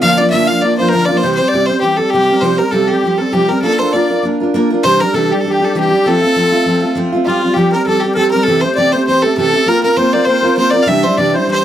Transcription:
0.01 D2 D3 F3 A#3 D4 F4 F5
0.16 D4 F4 D5
0.21 F3 A#3
0.30 D2 D3 F3 E5
0.34 A#3 D4 F4
0.46 D4 F4 F5
0.51 F3 A#3
0.61 F3 A#3 D4 D5
0.65 F4
0.78 A#3 D4 F4 C5
0.82 F3
0.88 D2 A#4
0.93 D3 F3 A#3 D4 F4 A#4
1.05 F4 D5
1.10 F3 A#3 D4 D5
1.17 C5
1.22 C3 E3 G3 C4 C5
1.26 G4
1.35 G4 C5
1.41 G3 C4
1.48 D5
1.53 C3 E3 G3 C4 G4 D5
1.66 G4 C5
1.71 G3 C4
1.80 E3 G3 G4
1.85 C4 G4
1.96 G4 A4
2.01 G3 C4
2.10 C3 E3 G4
2.15 G3 C4 G4
2.30 G3 C4 G4 A#4
2.41 C3 F3 G3 C4 G4 C5
2.58 G3 C4 G4 A#4
2.71 C3 F3 G3 C4 G4 A4
2.75 A4
2.87 C4 G4
2.93 G3 G4
3.03 F3 G3 C4 G4
3.18 G3 C4 G4 A4 A#4
3.32 C3 F3 G3 C4 G4
3.49 G3 C4 G4 A#4
3.54 A#4
3.62 A#3 D4 F4 A4 A#4
3.67 A4
3.79 D4 F4 A#4 C5
3.92 A#3 D4 F4 A#4 D5
4.10 D4 F4 A#4 D5
4.23 A#3 D4 F4 A#4
4.40 D4 F4 A#4
4.54 A#3 D4 F4 A#4
4.70 D4 F4 A#4
4.83 C3 E3 G3 D4 G4 C5
4.98 D4 G4 A#4
5.04 G3
5.13 C3 E3 G3 D4 G4 A4
5.30 D4 G4
5.34 G3
5.40 A4
5.44 E3 G3 D4 G4
5.48 G4
5.60 G3 D4 G4
5.64 A4
5.74 C3 E3 G3 D4 G4
5.80 G4
5.91 G3 D4 G4
6.04 F3 A3 C4 A4
6.08 F4
6.22 A3 C4 F4
6.36 F3 A3 C4 F4
6.52 A3 C4 F4
6.66 F3 A3 C4 F4
6.82 A3 C4 F4
6.95 F3 A3 C4 F4
7.12 A3 C4 F4
7.24 F3 G3 F4
7.29 C4 G4
7.42 G3 C4 G4
7.54 F3 G3 C4 G4
7.59 G4
7.72 C4 G4 A#4
7.77 G3
7.86 F3 G3 C4 G4 A4
8.00 G4
8.04 G3 C4 G4
8.13 F3 G3 A4 A#4
8.18 C4 G4
8.31 C4 G4 A#4
8.35 G3
8.43 C3 A4
8.48 E3 A3 C4 G4 A4
8.61 A3 G4 C5
8.66 C4
8.75 C3 E3 C4 D5
8.79 A3 G4
8.92 A3 G4 C5
8.96 C4
9.07 E3 A3 C4 C5
9.11 G4
9.22 A3 G4 A4
9.27 C4
9.37 C3 E3 A3 C4 G4 A4
9.54 A3 C4 G4
9.66 A#3 C4 F4 A#4
9.83 C4 F4 A#4
9.97 A#3 C4 F4 A#4 C5
10.13 C4 F4 A#4 D5
10.25 A#3 C4 F4 C5
10.30 A#4
10.42 C4 F4 A#4
10.57 A#3 C4 F4 A#4 C5
10.70 A#4 D5
10.75 C4 F4 D5
10.83 C3 E5 F5
10.87 E3 G3 D4 E4 E5
11.03 D4 E4 C5
11.08 G3
11.17 C3 E3 G3 D4 E4 D5
11.29 D5
11.34 D4 E4 C5
11.38 G3
11.46 E3 G3 D4 C5
11.51 E4 C5

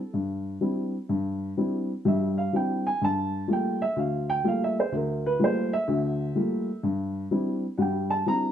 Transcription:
Already playing: A4
0.14 G2
0.61 G3 C4 D4 E4
1.09 G2
1.57 G3 C4 D4 E4
2.05 G2 G3 E5
2.38 F5
2.53 G3 C4 D4 E4 G5
2.87 G#5
3.01 G2 A5
3.48 G3 A3 A#3 F4
3.53 G5
3.82 E5
3.96 D2 F5
4.30 G5
4.44 G3 A3 A#3 F4 F5
4.64 E5
4.80 C5
4.92 D2
4.96 A#4
5.26 B4
5.39 G3 A3 A#3 F4
5.44 C5
5.73 E5
5.88 D2 D3
6.35 G3 A3 A#3 F4
6.83 G2
7.31 G3 C4 D4 E4
7.78 G2 G3 F#5 G5
8.10 A5
8.26 G3 C4 D4 E4 A#5

